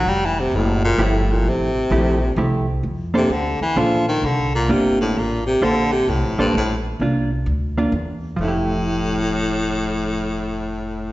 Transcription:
X:1
M:3/4
L:1/8
Q:"Swing" 1/4=130
K:F
V:1 name="Hollow-body jazz guitar"
z4 [F,A,EG]2- | [F,A,EG] z [F,A,EG] z [F,A,EG] z | z [B,DAc] z2 [B,DAc] z | z2 [B,DF]3 z |
[B,DAc] z2 [B,DAc] z2 | [B,DF] z2 [B,DF] z2 | [F,A,EG]6- | [F,A,EG]6 |]
V:2 name="Baritone saxophone" clef=bass
(3G, E, C, A,, B,, A,, B,, | C,4 z2 | z C, D, E, F, _E, | D, B,, C, A,, B,, C, |
D, C, A,, G,, A,, z | z6 | A,,6- | A,,6 |]
V:3 name="Upright bass" clef=bass
F,,,2 _G,,,2 =G,,,2 | A,,,2 B,,,2 C,,2 | F,,2 D,, z B,,,2 | C,,2 G,,,2 A,,,2 |
B,,,2 (3C,, B,,, A,,, B,,,2 | C,,2 D,,2 E,,2 | F,,,6- | F,,,6 |]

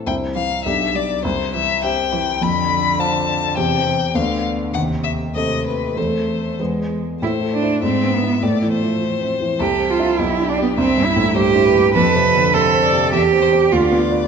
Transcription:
X:1
M:2/4
L:1/16
Q:1/4=102
K:Am
V:1 name="Violin"
g2 f2 e2 d2 | c2 e2 g4 | b4 a4 | g4 f2 z2 |
^f2 e2 ^d2 B2 | c4 z4 | c4 e4 | d2 c6 |
A4 G4 | e4 c2 B2 | A4 c2 d2 | e2 c2 d4 |]
V:2 name="Grand piano"
[C,,CEe]4 [B,,,DGd]4 | C,,4 [CGe]4 | F,,4 [CFf]4 | [E,,CGc]4 [D,,B,Dd]4 |
^D,,4 [A,^B,A]4 | [E,,A,CA]4 [E,,^G,B,B]4 | (3A,,2 A,2 [Ec]2 (3^G,,2 B,2 [Ee]2 | (3A,,2 E,2 F,2 (3E,2 C2 E,2 |
(3C,,2 C2 [Ee]2 (3B,,,2 D2 [Gd]2 | (3C,,2 G,,2 A,,2 (3G,,2 E2 G,,2 | (3F,,2 C,2 D,2 (3C,2 C2 C,2 | (3E,,2 C2 [Gc]2 (3D,,2 B,2 [Bd]2 |]
V:3 name="Cello"
z2 E,2 z2 G,2 | z2 E,2 z2 E,2 | D,8 | C,2 C,2 D,4 |
^B,,4 B,,4 | A,4 ^G,2 z2 | E2 D2 C2 B,2 | A,6 z2 |
G2 F2 E2 D B, | C2 E2 G4 | B4 A4 | G4 F2 z2 |]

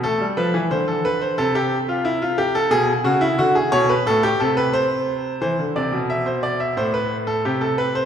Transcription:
X:1
M:4/4
L:1/16
Q:1/4=89
K:Am
V:1 name="Grand piano"
A2 B2 c A B c A G2 F E F G A | ^G2 ^F E F G ^c B A =G A B =c4 | c2 d2 e c d e c B2 A G A B c |]
V:2 name="Grand piano" clef=bass
A, G, F, E, D,4 C,8 | B,,2 ^C,2 D,2 B,,2 A,,2 =C,6 | E, D, C, B,,4- B,, A,,4 C,4 |]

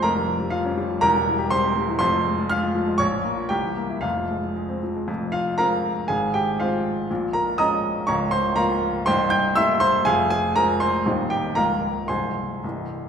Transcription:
X:1
M:2/4
L:1/16
Q:1/4=120
K:Fm
V:1 name="Grand piano"
[Bb]4 [Ff]2 z2 | [Bb]4 [cc']4 | [cc']4 [ff']4 | [dd']4 [Gg]4 |
[Ff]6 z2 | z2 [Ff]2 [Bfb]4 | [Afa]2 [Gg]2 [Fcf]4 | z2 [Bb]2 [ebe']4 |
[dbd']2 [cc']2 [Bfb]4 | [cgc']2 [gg']2 [=ec'=e']2 [cc']2 | [Afa]2 [Aa]2 [Bb]2 [cc']2 | z2 [Gg]2 [Bfb]4 |
[cac']6 z2 |]
V:2 name="Grand piano" clef=bass
[F,,,F,,] G, F, G, F, D G, F, | [=E,,,=E,,] G, =E, G G, C G, E, | [F,,,F,,] F, A, F A, F F, A, | B,,, F, B, F C,, =E, B, =E |
[F,,,F,,] F, A, F, A, C F, A, | [F,,,F,,]4 [F,A,C]4 | [A,,,A,,]4 [F,A,C]4 | [B,,,B,,]4 [F,A,D]4 |
[D,,,D,,]4 [F,B,F]4 | [C,,,C,,]4 [G,B,=E]4 | [F,,,F,,]4 [F,A,C]4 | [E,,,E,,G,CE]4 [D,,,D,,F,B,F]4 |
[C,,,C,,F,A,F]4 [C,,,C,,=E,G,G]4 |]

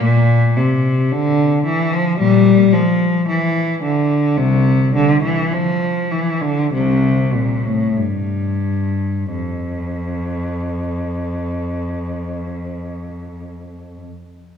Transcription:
X:1
M:4/4
L:1/16
Q:1/4=49
K:F
V:1 name="Cello" clef=bass
B,,2 C,2 D,2 E, F, [B,,G,]2 F,2 E,2 D,2 | [C,,C,]2 D, E, F,2 E, D, [C,,C,]2 B,, A,, G,,4 | F,,16 |]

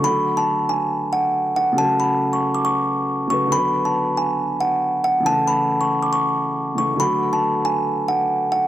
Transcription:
X:1
M:4/4
L:1/16
Q:1/4=138
K:Dlyd
V:1 name="Kalimba"
b3 a3 g4 f4 f2 | a2 b3 c'2 d' c'6 c'2 | b3 a3 g4 f4 f2 | a2 b3 c'2 d' c'6 c'2 |
b3 a3 g4 f4 f2 |]
V:2 name="Grand piano"
[D,F,A,FA]16 | [C,F,A,FA]12- [C,F,A,FA]2 [C,F,A,FB]2 | [D,F,B,FB]16 | [C,E,A,EA]12- [C,E,A,EA]2 [C,E,A,EA]2 |
[D,F,A,FA]16 |]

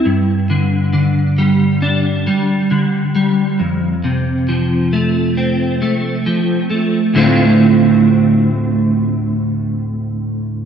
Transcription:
X:1
M:4/4
L:1/8
Q:1/4=68
K:Dm
V:1 name="Clean electric guitar" clef=bass
G,, D, D, G, D G, D, G, | F,, C, F, A, C A, F, A, | [D,,A,,D,A,CF]8 |]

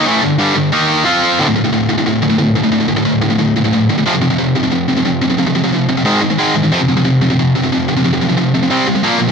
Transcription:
X:1
M:4/4
L:1/16
Q:1/4=180
K:Dphr
V:1 name="Distorted electric guitar" clef=bass
[A,,=E,A,]2 [G,,D,]2 [G,,D,G,]2 [G,,D,]2 [_E,B,E]4 [F,CF]4 | [D,,A,,D,] [D,,A,,] [D,,A,,] [D,,A,,] [D,,A,,]2 [D,,A,,] [D,,A,,] [D,,A,,]2 [D,,A,,] [D,,A,,] [D,,A,,]2 [D,,A,,] [D,,A,,] | [D,,A,,] [D,,A,,] [D,,A,,] [D,,A,,] [D,,A,,]2 [D,,A,,] [D,,A,,] [D,,A,,]2 [D,,A,,] [D,,A,,] [D,,A,,]2 [D,,A,,] [D,,A,,] | [F,,C,F,] [F,,C,] [F,,C,] [F,,C,] [F,,C,]2 [F,,C,] [F,,C,] [F,,C,]2 [F,,C,] [F,,C,] [F,,C,]2 [F,,C,] [F,,C,] |
[F,,C,] [F,,C,] [F,,C,] [F,,C,] [F,,C,]2 [F,,C,] [F,,C,] [^G,,^D,^G,]2 [G,,D,] [G,,D,] [G,,D,G,]2 [G,,D,] [G,,D,] | [F,,C,F,] [F,,C,] [F,,C,] [F,,C,] [F,,C,]2 [F,,C,] [F,,C,] [F,,C,]2 [F,,C,] [F,,C,] [F,,C,]2 [F,,C,] [F,,C,] | [F,,C,] [F,,C,] [F,,C,] [F,,C,] [F,,C,]2 [F,,C,] [F,,C,] [C,G,C]2 [C,G,] [C,G,] [B,,F,B,]2 [B,,F,] [B,,F,] |]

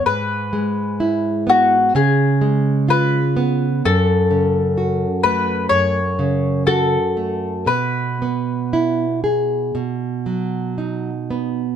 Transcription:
X:1
M:4/4
L:1/8
Q:1/4=63
K:E
V:1 name="Mandolin"
B3 F G2 B2 | A3 B c2 A2 | B6 z2 |]
V:2 name="Nylon-string guitar"
G,, G, E B, C, G, ^E B, | F,, C, F A, F,, C, F A, | B,, B, E G B,, F, D B, |]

